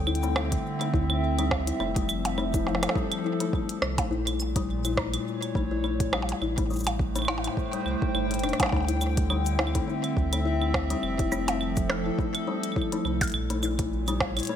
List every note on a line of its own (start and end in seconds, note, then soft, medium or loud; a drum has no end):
0.00 0.57 D2 medium
0.00 1.80 D3 medium
0.00 4.11 C4 medium
0.00 0.42 C5 medium
0.00 4.11 E5 medium
0.00 2.59 G5 medium
0.07 0.17 E4 medium
0.07 claves medium
0.15 closed hi-hat soft
0.23 0.31 A3 loud
0.23 cabasa medium
0.36 0.46 G3 medium
0.36 cross-stick loud
0.36 percussion blips medium
0.36 claves medium
0.52 kick loud
0.52 closed hi-hat medium
0.81 0.86 A3 loud
0.81 closed hi-hat soft
0.81 claves medium
0.94 1.72 D2 loud
0.94 1.00 E4 medium
0.94 kick loud
1.10 1.18 A3 medium
1.10 claves medium
1.39 1.47 G3 medium
1.39 closed hi-hat medium
1.39 claves medium
1.51 kick loud
1.51 cross-stick loud
1.51 percussion blips medium
1.67 1.75 E4 medium
1.67 closed hi-hat medium
1.80 2.88 F1 loud
1.80 4.11 F3 medium
1.80 1.90 A3 loud
1.80 claves medium
1.96 2.04 G3 medium
1.96 kick loud
1.96 closed hi-hat medium
2.09 cabasa medium
2.09 claves medium
2.25 closed hi-hat medium
2.25 percussion blips medium
2.35 2.44 A3 loud
2.35 4.84 A4 medium
2.35 claves medium
2.54 2.59 E4 medium
2.54 kick loud
2.54 closed hi-hat soft
2.54 cabasa medium
2.67 2.77 A3 medium
2.67 cross-stick medium
2.67 percussion blips soft
2.75 cross-stick medium
2.75 percussion blips soft
2.83 cross-stick medium
2.83 closed hi-hat medium
2.83 percussion blips medium
2.83 claves medium
2.89 cross-stick loud
2.89 percussion blips medium
2.95 3.06 G3 loud
2.95 kick loud
3.12 closed hi-hat soft
3.12 claves medium
3.24 3.34 E4 medium
3.40 3.48 A3 loud
3.40 closed hi-hat medium
3.53 3.63 G3 medium
3.53 kick loud
3.69 closed hi-hat medium
3.82 4.01 C2 medium
3.82 cross-stick loud
3.82 claves medium
3.98 4.03 A3 loud
3.98 kick loud
3.98 closed hi-hat medium
3.98 percussion blips medium
4.11 5.18 A#1 loud
4.11 6.42 A#2 medium
4.11 4.17 E4 medium
4.27 4.35 A3 medium
4.27 closed hi-hat medium
4.27 claves medium
4.40 cabasa medium
4.40 claves medium
4.56 4.64 G3 loud
4.56 kick loud
4.56 closed hi-hat medium
4.85 4.93 E4 medium
4.85 closed hi-hat soft
4.85 cabasa medium
4.85 claves medium
4.97 5.08 A3 loud
4.97 kick loud
4.97 cross-stick loud
4.97 percussion blips medium
5.14 5.22 G3 medium
5.14 6.42 C#5 medium
5.14 closed hi-hat medium
5.14 claves medium
5.42 closed hi-hat soft
5.42 claves medium
5.55 6.34 A#1 medium
5.55 5.61 A3 loud
5.55 kick loud
5.71 5.76 E4 medium
5.84 5.94 A3 medium
5.84 claves soft
6.00 kick loud
6.00 closed hi-hat medium
6.13 6.23 G3 loud
6.13 cross-stick loud
6.13 percussion blips medium
6.13 claves medium
6.22 percussion blips medium
6.29 closed hi-hat medium
6.29 percussion blips medium
6.42 7.49 A1 loud
6.42 8.72 A2 medium
6.42 6.52 E4 medium
6.42 claves soft
6.54 8.72 A3 medium
6.54 6.66 A3 medium
6.54 kick loud
6.54 closed hi-hat medium
6.70 6.81 G3 medium
6.70 cabasa soft
6.73 cabasa soft
6.76 cabasa medium
6.79 cabasa medium
6.80 cabasa medium
6.84 closed hi-hat medium
6.84 percussion blips medium
6.84 cabasa medium
6.84 claves soft
6.98 11.96 G5 medium
6.98 kick loud
7.08 9.65 C5 medium
7.16 7.20 A3 loud
7.16 closed hi-hat soft
7.16 cabasa medium
7.16 claves soft
7.19 claves soft
7.22 claves medium
7.25 7.34 E4 medium
7.25 cross-stick loud
7.25 percussion blips medium
7.25 claves medium
7.38 percussion blips medium
7.44 7.52 A3 medium
7.44 closed hi-hat medium
7.44 percussion blips medium
7.44 claves medium
7.57 kick loud
7.73 7.81 G3 medium
7.73 closed hi-hat soft
7.86 7.96 C2 medium
7.86 claves soft
8.02 8.07 A3 medium
8.02 kick loud
8.15 8.45 G1 loud
8.15 8.25 A3 medium
8.15 claves medium
8.31 8.39 A3 medium
8.31 closed hi-hat soft
8.34 closed hi-hat soft
8.39 closed hi-hat soft
8.44 8.53 E1 medium
8.44 8.54 D4 medium
8.44 cross-stick medium
8.44 closed hi-hat soft
8.44 claves soft
8.49 closed hi-hat soft
8.53 cross-stick medium
8.53 closed hi-hat soft
8.60 8.68 G3 loud
8.60 kick loud
8.60 cross-stick loud
8.60 closed hi-hat medium
8.60 percussion blips medium
8.63 percussion blips medium
8.66 percussion blips medium
8.69 percussion blips soft
8.72 9.80 D2 loud
8.72 11.03 D3 medium
8.72 8.79 A3 loud
8.72 kick loud
8.72 percussion blips soft
8.76 percussion blips soft
8.80 percussion blips soft
8.84 percussion blips soft
8.89 8.93 E4 medium
8.89 closed hi-hat medium
9.01 9.11 A3 medium
9.01 cabasa medium
9.01 claves medium
9.17 kick loud
9.17 closed hi-hat medium
9.24 13.34 C4 medium
9.24 13.34 E5 medium
9.30 9.40 G3 loud
9.30 claves medium
9.46 closed hi-hat soft
9.46 cabasa medium
9.59 9.69 E4 medium
9.59 cross-stick loud
9.59 percussion blips medium
9.67 claves soft
9.75 9.83 A3 loud
9.75 kick loud
9.75 closed hi-hat medium
9.88 9.94 A3 medium
10.04 closed hi-hat soft
10.04 claves soft
10.17 10.95 D2 loud
10.17 kick loud
10.33 10.38 A3 loud
10.33 closed hi-hat medium
10.33 claves medium
10.46 10.52 E4 medium
10.62 10.70 A3 medium
10.62 claves medium
10.74 kick loud
10.74 cross-stick loud
10.74 percussion blips medium
10.90 10.98 G3 loud
10.90 closed hi-hat medium
11.03 12.11 F1 medium
11.03 13.34 F3 medium
11.03 claves medium
11.19 11.27 E4 medium
11.19 kick loud
11.19 closed hi-hat soft
11.32 11.42 A3 loud
11.32 cabasa medium
11.32 claves medium
11.48 11.53 A3 medium
11.48 14.27 A4 medium
11.48 closed hi-hat medium
11.48 percussion blips medium
11.61 claves soft
11.77 kick loud
11.77 closed hi-hat soft
11.77 cabasa medium
11.90 11.96 A3 loud
11.90 cross-stick loud
11.90 percussion blips medium
12.06 12.11 E4 medium
12.19 12.29 A3 medium
12.19 kick loud
12.35 closed hi-hat soft
12.35 claves medium
12.47 12.58 G3 loud
12.63 closed hi-hat medium
12.63 claves soft
12.72 claves soft
12.76 12.86 E4 medium
12.76 kick medium
12.82 claves soft
12.92 13.00 A3 loud
12.92 closed hi-hat medium
13.05 13.24 C2 medium
13.05 13.11 A3 medium
13.05 claves medium
13.21 kick loud
13.21 closed hi-hat medium
13.21 percussion blips loud
13.23 closed hi-hat medium
13.23 closed hi-hat soft
13.28 closed hi-hat soft
13.30 closed hi-hat soft
13.32 14.41 A#1 loud
13.32 14.56 A#2 medium
13.32 closed hi-hat soft
13.32 claves medium
13.50 13.55 A3 loud
13.50 closed hi-hat medium
13.63 13.69 E4 medium
13.63 cabasa medium
13.63 claves medium
13.79 13.87 A3 medium
13.79 kick loud
13.79 closed hi-hat medium
13.90 14.56 C#5 medium
14.08 14.16 G3 loud
14.08 closed hi-hat soft
14.08 cabasa medium
14.08 claves medium
14.20 kick loud
14.20 cross-stick loud
14.20 percussion blips medium
14.37 14.45 E4 medium
14.37 closed hi-hat soft
14.37 claves medium
14.39 closed hi-hat soft
14.43 closed hi-hat soft
14.45 closed hi-hat soft
14.47 14.56 A3 loud
14.47 closed hi-hat medium